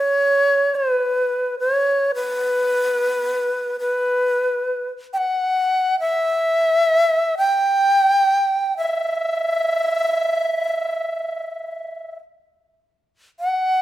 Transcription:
0, 0, Header, 1, 2, 480
1, 0, Start_track
1, 0, Tempo, 1104972
1, 1898, Time_signature, 4, 2, 24, 8
1, 3818, Tempo, 1129944
1, 4778, Tempo, 1160542
1, 5924, End_track
2, 0, Start_track
2, 0, Title_t, "Shakuhachi"
2, 0, Program_c, 0, 77
2, 0, Note_on_c, 0, 73, 84
2, 326, Note_on_c, 0, 71, 65
2, 333, Note_off_c, 0, 73, 0
2, 689, Note_off_c, 0, 71, 0
2, 691, Note_on_c, 0, 73, 73
2, 920, Note_off_c, 0, 73, 0
2, 932, Note_on_c, 0, 71, 84
2, 1637, Note_off_c, 0, 71, 0
2, 1650, Note_on_c, 0, 71, 76
2, 2120, Note_off_c, 0, 71, 0
2, 2230, Note_on_c, 0, 79, 63
2, 2248, Note_on_c, 0, 78, 73
2, 2255, Note_off_c, 0, 79, 0
2, 2603, Note_off_c, 0, 78, 0
2, 2605, Note_on_c, 0, 76, 90
2, 3193, Note_off_c, 0, 76, 0
2, 3205, Note_on_c, 0, 79, 83
2, 3797, Note_off_c, 0, 79, 0
2, 3811, Note_on_c, 0, 76, 80
2, 5241, Note_off_c, 0, 76, 0
2, 5750, Note_on_c, 0, 78, 100
2, 5924, Note_off_c, 0, 78, 0
2, 5924, End_track
0, 0, End_of_file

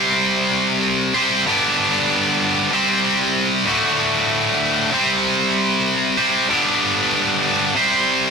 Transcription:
0, 0, Header, 1, 2, 480
1, 0, Start_track
1, 0, Tempo, 629591
1, 1109, Time_signature, 4, 2, 24, 8
1, 6330, End_track
2, 0, Start_track
2, 0, Title_t, "Distorted electric guitar"
2, 0, Program_c, 0, 30
2, 0, Note_on_c, 0, 48, 86
2, 0, Note_on_c, 0, 55, 93
2, 0, Note_on_c, 0, 60, 105
2, 0, Note_on_c, 0, 67, 101
2, 0, Note_on_c, 0, 72, 102
2, 855, Note_off_c, 0, 48, 0
2, 857, Note_off_c, 0, 55, 0
2, 859, Note_off_c, 0, 60, 0
2, 861, Note_off_c, 0, 67, 0
2, 862, Note_off_c, 0, 72, 0
2, 871, Note_on_c, 0, 72, 91
2, 879, Note_on_c, 0, 60, 75
2, 879, Note_on_c, 0, 67, 91
2, 886, Note_on_c, 0, 55, 76
2, 890, Note_on_c, 0, 48, 75
2, 1096, Note_off_c, 0, 72, 0
2, 1100, Note_off_c, 0, 60, 0
2, 1100, Note_off_c, 0, 67, 0
2, 1103, Note_off_c, 0, 55, 0
2, 1105, Note_off_c, 0, 48, 0
2, 1113, Note_on_c, 0, 43, 104
2, 1117, Note_on_c, 0, 50, 104
2, 1119, Note_on_c, 0, 55, 105
2, 1125, Note_on_c, 0, 59, 105
2, 1126, Note_on_c, 0, 62, 95
2, 1131, Note_on_c, 0, 67, 111
2, 2056, Note_off_c, 0, 43, 0
2, 2058, Note_off_c, 0, 50, 0
2, 2059, Note_off_c, 0, 55, 0
2, 2062, Note_off_c, 0, 59, 0
2, 2065, Note_off_c, 0, 67, 0
2, 2067, Note_on_c, 0, 48, 90
2, 2073, Note_on_c, 0, 55, 89
2, 2078, Note_on_c, 0, 60, 91
2, 2083, Note_on_c, 0, 67, 92
2, 2086, Note_on_c, 0, 72, 93
2, 2090, Note_off_c, 0, 62, 0
2, 2774, Note_off_c, 0, 48, 0
2, 2776, Note_off_c, 0, 55, 0
2, 2779, Note_off_c, 0, 60, 0
2, 2782, Note_off_c, 0, 67, 0
2, 2783, Note_off_c, 0, 72, 0
2, 2784, Note_on_c, 0, 38, 95
2, 2791, Note_on_c, 0, 45, 102
2, 2795, Note_on_c, 0, 50, 100
2, 2797, Note_on_c, 0, 57, 105
2, 2801, Note_on_c, 0, 66, 100
2, 3732, Note_off_c, 0, 38, 0
2, 3736, Note_off_c, 0, 45, 0
2, 3738, Note_off_c, 0, 50, 0
2, 3739, Note_off_c, 0, 57, 0
2, 3741, Note_off_c, 0, 66, 0
2, 3747, Note_on_c, 0, 48, 97
2, 3753, Note_on_c, 0, 55, 95
2, 3757, Note_on_c, 0, 60, 88
2, 3761, Note_on_c, 0, 67, 108
2, 3766, Note_on_c, 0, 72, 92
2, 4694, Note_off_c, 0, 48, 0
2, 4697, Note_off_c, 0, 55, 0
2, 4698, Note_off_c, 0, 72, 0
2, 4699, Note_off_c, 0, 60, 0
2, 4701, Note_off_c, 0, 67, 0
2, 4708, Note_on_c, 0, 72, 82
2, 4714, Note_on_c, 0, 67, 72
2, 4718, Note_on_c, 0, 60, 69
2, 4722, Note_on_c, 0, 55, 77
2, 4726, Note_on_c, 0, 48, 74
2, 4934, Note_off_c, 0, 72, 0
2, 4937, Note_off_c, 0, 67, 0
2, 4939, Note_off_c, 0, 60, 0
2, 4942, Note_off_c, 0, 55, 0
2, 4943, Note_off_c, 0, 48, 0
2, 4948, Note_on_c, 0, 43, 96
2, 4952, Note_on_c, 0, 50, 103
2, 4956, Note_on_c, 0, 55, 99
2, 4960, Note_on_c, 0, 59, 95
2, 4962, Note_on_c, 0, 62, 95
2, 4965, Note_on_c, 0, 67, 91
2, 5895, Note_off_c, 0, 43, 0
2, 5897, Note_off_c, 0, 50, 0
2, 5899, Note_off_c, 0, 55, 0
2, 5901, Note_off_c, 0, 59, 0
2, 5903, Note_off_c, 0, 67, 0
2, 5906, Note_on_c, 0, 48, 80
2, 5915, Note_on_c, 0, 55, 94
2, 5917, Note_on_c, 0, 60, 83
2, 5922, Note_on_c, 0, 67, 93
2, 5926, Note_on_c, 0, 72, 114
2, 5929, Note_off_c, 0, 62, 0
2, 6330, Note_off_c, 0, 48, 0
2, 6330, Note_off_c, 0, 55, 0
2, 6330, Note_off_c, 0, 60, 0
2, 6330, Note_off_c, 0, 67, 0
2, 6330, Note_off_c, 0, 72, 0
2, 6330, End_track
0, 0, End_of_file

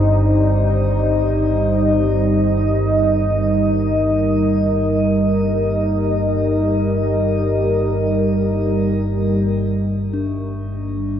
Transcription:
0, 0, Header, 1, 4, 480
1, 0, Start_track
1, 0, Tempo, 500000
1, 10750, End_track
2, 0, Start_track
2, 0, Title_t, "Ambient pad"
2, 0, Program_c, 0, 92
2, 0, Note_on_c, 0, 55, 74
2, 0, Note_on_c, 0, 63, 81
2, 0, Note_on_c, 0, 72, 85
2, 0, Note_on_c, 0, 74, 81
2, 711, Note_on_c, 0, 75, 81
2, 1094, Note_off_c, 0, 74, 0
2, 2162, Note_on_c, 0, 70, 90
2, 2539, Note_off_c, 0, 72, 0
2, 9691, Note_off_c, 0, 75, 0
2, 9701, Note_off_c, 0, 63, 0
2, 10750, Note_off_c, 0, 55, 0
2, 10750, Note_off_c, 0, 70, 0
2, 10750, End_track
3, 0, Start_track
3, 0, Title_t, "Singing bowl"
3, 0, Program_c, 1, 14
3, 9730, Note_on_c, 1, 62, 56
3, 10750, Note_off_c, 1, 62, 0
3, 10750, End_track
4, 0, Start_track
4, 0, Title_t, "Synth drone"
4, 0, Program_c, 2, 95
4, 0, Note_on_c, 2, 31, 70
4, 0, Note_on_c, 2, 43, 68
4, 9729, Note_off_c, 2, 43, 0
4, 9733, Note_off_c, 2, 31, 0
4, 9740, Note_on_c, 2, 43, 74
4, 9745, Note_on_c, 2, 31, 65
4, 10750, Note_off_c, 2, 31, 0
4, 10750, Note_off_c, 2, 43, 0
4, 10750, End_track
0, 0, End_of_file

